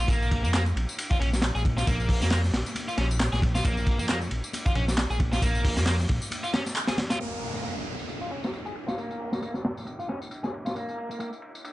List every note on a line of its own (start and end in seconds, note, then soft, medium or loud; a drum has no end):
0.00 high conga medium
0.08 0.45 A#1 loud
0.08 0.43 A#3 loud
0.08 kick loud
0.08 ride medium
0.08 tambourine medium
0.08 low conga medium
0.22 tambourine soft
0.31 kick medium
0.31 ride medium
0.31 muted conga medium
0.44 0.73 F2 medium
0.44 0.50 A#3 loud
0.44 tambourine medium
0.54 0.62 A#3 medium
0.54 snare loud
0.54 clap loud
0.54 ride medium
0.54 tambourine soft
0.66 tambourine soft
0.66 muted conga medium
0.76 0.86 A#1 medium
0.76 ride medium
0.89 tambourine medium
0.98 ride medium
0.98 tambourine soft
1.11 1.17 F4 medium
1.11 kick loud
1.11 tambourine soft
1.11 muted conga medium
1.11 low conga medium
1.20 1.51 A#1 loud
1.20 1.28 C#4 medium
1.20 ride medium
1.20 high conga medium
1.33 snare medium
1.33 tambourine medium
1.42 snare loud
1.42 clap loud
1.42 ride medium
1.42 tambourine medium
1.42 muted conga medium
1.55 1.84 A#1 medium
1.55 1.61 G#4 medium
1.55 tambourine soft
1.65 kick loud
1.65 ride medium
1.65 high conga medium
1.77 1.86 F4 medium
1.77 snare medium
1.77 tambourine medium
1.77 high conga medium
1.87 2.23 A#1 loud
1.87 2.20 A#3 loud
1.87 kick loud
1.87 ride medium
1.87 tambourine medium
1.87 muted conga medium
2.00 tambourine soft
2.09 kick medium
2.09 open hi-hat medium
2.22 2.51 F2 medium
2.22 2.28 A#3 loud
2.22 snare soft
2.22 tambourine medium
2.22 muted conga medium
2.31 2.39 A#3 medium
2.31 snare loud
2.31 clap loud
2.31 ride medium
2.31 tambourine soft
2.44 snare soft
2.44 tambourine soft
2.53 2.64 A#1 medium
2.53 snare loud
2.53 ride medium
2.66 tambourine medium
2.66 muted conga medium
2.75 ride medium
2.75 tambourine soft
2.75 high conga medium
2.88 2.95 F4 medium
2.88 tambourine soft
2.98 3.29 A#1 medium
2.98 3.06 C#4 medium
2.98 snare soft
2.98 ride medium
2.98 muted conga medium
2.98 high conga medium
3.11 tambourine medium
3.20 snare loud
3.20 clap loud
3.20 ride medium
3.20 tambourine soft
3.33 3.62 A#1 medium
3.33 3.39 G#4 medium
3.33 snare medium
3.33 tambourine soft
3.42 kick loud
3.42 ride medium
3.42 muted conga medium
3.42 low conga medium
3.55 3.64 F4 medium
3.55 snare soft
3.55 tambourine medium
3.55 high conga medium
3.64 4.01 A#1 loud
3.64 3.98 A#3 loud
3.64 kick loud
3.64 ride medium
3.64 tambourine medium
3.64 low conga medium
3.77 tambourine soft
3.77 muted conga medium
3.87 kick medium
3.87 ride medium
3.99 4.28 F2 loud
3.99 4.06 A#3 loud
3.99 tambourine medium
4.09 4.17 A#3 medium
4.09 snare loud
4.09 clap loud
4.09 ride medium
4.09 tambourine medium
4.22 tambourine soft
4.22 muted conga medium
4.31 4.41 A#1 medium
4.31 ride medium
4.44 tambourine medium
4.53 ride medium
4.53 tambourine medium
4.53 muted conga medium
4.66 4.72 F4 medium
4.66 kick medium
4.66 tambourine soft
4.66 low conga medium
4.75 5.07 A#1 medium
4.75 4.84 C#4 medium
4.75 ride medium
4.75 high conga medium
4.88 snare medium
4.88 tambourine medium
4.97 snare loud
4.97 clap loud
4.97 ride medium
4.97 tambourine medium
4.97 muted conga medium
5.10 5.39 A#1 medium
5.10 5.17 G#4 medium
5.10 tambourine soft
5.20 kick loud
5.20 ride medium
5.20 high conga medium
5.33 5.41 F4 medium
5.33 snare medium
5.33 tambourine medium
5.33 muted conga medium
5.33 high conga medium
5.42 5.79 A#1 loud
5.42 5.76 A#3 loud
5.42 kick loud
5.42 ride medium
5.42 tambourine medium
5.42 low conga medium
5.55 tambourine soft
5.65 kick loud
5.65 open hi-hat medium
5.65 low conga medium
5.77 6.06 F2 medium
5.77 5.83 A#3 loud
5.77 snare medium
5.77 tambourine medium
5.77 muted conga soft
5.86 5.95 A#3 medium
5.86 snare loud
5.86 clap loud
5.86 ride medium
5.86 tambourine medium
5.99 snare soft
5.99 tambourine soft
6.09 6.20 A#1 medium
6.09 kick medium
6.09 ride medium
6.09 muted conga medium
6.22 tambourine medium
6.31 ride medium
6.31 tambourine medium
6.31 high conga medium
6.44 6.50 F4 medium
6.44 tambourine soft
6.53 6.62 C#4 medium
6.53 snare loud
6.53 ride medium
6.53 muted conga soft
6.53 high conga medium
6.66 snare soft
6.66 tambourine medium
6.75 clap loud
6.75 ride medium
6.75 tambourine medium
6.87 6.94 G#4 medium
6.87 snare loud
6.87 ride medium
6.87 tambourine soft
6.87 muted conga medium
6.97 snare loud
6.97 ride medium
6.97 low conga medium
7.10 7.19 F4 medium
7.10 snare loud
7.10 ride medium
7.10 tambourine medium
7.10 high conga medium
7.19 7.53 A#3 medium
7.19 ride medium
7.19 tambourine soft
7.19 downlifter medium
7.33 tambourine soft
7.42 ride medium
7.55 7.61 A#3 medium
7.55 tambourine medium
7.64 7.73 A#3 medium
7.64 ride medium
7.64 tambourine soft
7.77 tambourine soft
7.87 ride medium
8.00 tambourine medium
8.08 ride medium
8.08 tambourine soft
8.21 8.28 F4 medium
8.21 tambourine soft
8.31 8.39 C#4 medium
8.31 ride medium
8.44 snare medium
8.44 tambourine medium
8.53 ride medium
8.53 tambourine soft
8.66 8.72 G#4 medium
8.66 tambourine soft
8.75 ride medium
8.88 8.97 F4 medium
8.88 snare soft
8.88 tambourine medium
8.98 9.31 A#3 medium
8.98 ride medium
8.98 tambourine soft
9.11 tambourine soft
9.20 open hi-hat medium
9.33 9.39 A#3 medium
9.33 snare soft
9.33 tambourine medium
9.42 9.51 A#3 medium
9.42 ride medium
9.42 tambourine medium
9.54 snare soft
9.54 tambourine soft
9.65 snare medium
9.65 ride medium
9.77 tambourine medium
9.87 ride medium
9.87 tambourine soft
9.99 10.06 F4 medium
9.99 tambourine soft
10.09 10.17 C#4 medium
10.09 snare soft
10.09 ride medium
10.22 tambourine medium
10.31 ride medium
10.31 tambourine medium
10.44 10.50 G#4 medium
10.44 snare soft
10.44 tambourine soft
10.54 ride medium
10.66 10.74 F4 medium
10.66 snare soft
10.66 tambourine medium
10.75 11.09 A#3 medium
10.75 ride medium
10.75 tambourine soft
10.89 tambourine soft
10.98 ride medium
11.10 11.17 A#3 loud
11.10 tambourine medium
11.20 11.28 A#3 medium
11.20 ride medium
11.20 tambourine soft
11.33 tambourine soft
11.42 ride medium
11.55 tambourine medium
11.64 ride medium
11.64 tambourine soft